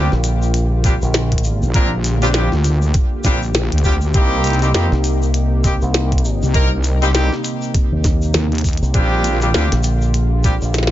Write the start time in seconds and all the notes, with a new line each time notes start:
Already playing: D3 G3 A#3 C4 D4 F4 G4
0.12 A#1, snare
0.24 closed hi-hat, shaker
0.42 shaker
0.54 closed hi-hat, shaker
0.84 G3 C4 D4 F4 G4, kick, closed hi-hat, shaker
1.02 A#1, shaker
1.14 snare, closed hi-hat, shaker
1.32 kick, closed hi-hat
1.38 closed hi-hat
1.42 A1, shaker
1.62 A#1, shaker
1.74 A#3 C4 D4 F4 A#4, kick, closed hi-hat, shaker
2.04 closed hi-hat, shaker
2.22 G3 C4 D4 F4 G4, closed hi-hat, shaker
2.34 G3 C4 D4 F4 G4, snare, closed hi-hat, shaker
2.52 D2, snare
2.64 closed hi-hat, shaker
2.82 shaker
2.94 kick, closed hi-hat, shaker
3.24 A#1 G3 C4 D4 F4 G4, kick, snare, closed hi-hat, shaker
3.42 shaker
3.54 snare, closed hi-hat, shaker
3.72 D2, closed hi-hat
3.78 closed hi-hat
3.84 G3 C4 D4 F4 G4, kick, shaker
4.01 shaker
4.14 C2 C3 G3 A#3 C4 D#4 G4, kick, closed hi-hat, shaker
4.44 closed hi-hat, shaker
4.47 closed hi-hat
4.50 closed hi-hat
4.53 closed hi-hat
4.59 D#4, closed hi-hat
4.62 G3 A#3 C4 G4, closed hi-hat, shaker
4.74 F2 G3 A#3 C4 D#4 G4, snare, closed hi-hat, shaker
4.92 C2, snare
5.04 closed hi-hat, shaker
5.22 shaker
5.34 closed hi-hat, shaker
5.64 G3 A#3 C4 D#4 G4, kick, closed hi-hat, shaker
5.82 C2, shaker
5.94 snare, closed hi-hat, shaker
6.12 kick, closed hi-hat
6.18 closed hi-hat
6.25 shaker
6.42 C2, shaker
6.54 A#3 C4 D#4 A#4, kick, closed hi-hat, shaker
6.84 closed hi-hat, shaker
7.02 G3 A#3 C4 D#4 G4, closed hi-hat, shaker
7.14 G3 A#3 C4 D#4 G4, snare, closed hi-hat, shaker
7.32 snare
7.44 closed hi-hat, shaker
7.62 shaker
7.74 kick, closed hi-hat, shaker
7.92 D#2
8.04 kick, snare, closed hi-hat, shaker
8.22 shaker
8.34 D#2, snare, closed hi-hat, shaker
8.52 closed hi-hat
8.55 closed hi-hat
8.58 closed hi-hat
8.61 closed hi-hat
8.64 kick, closed hi-hat, shaker
8.69 closed hi-hat
8.73 closed hi-hat
8.77 closed hi-hat
8.82 C2, shaker
8.94 A#1 D3 G3 C4 D4 F4 G4, kick, closed hi-hat, shaker
9.24 closed hi-hat, shaker
9.41 G3 C4 D4 F4 G4, closed hi-hat, shaker
9.54 D2 G3 C4 D4 F4 G4, snare, shaker
9.72 A#1, snare, closed hi-hat
9.83 closed hi-hat, shaker
10.02 shaker
10.14 closed hi-hat, shaker
10.44 G3 C4 D4 F4 G4, kick, closed hi-hat, shaker
10.62 A#1, shaker
10.74 snare, closed hi-hat, shaker
10.78 snare
10.83 snare
10.87 snare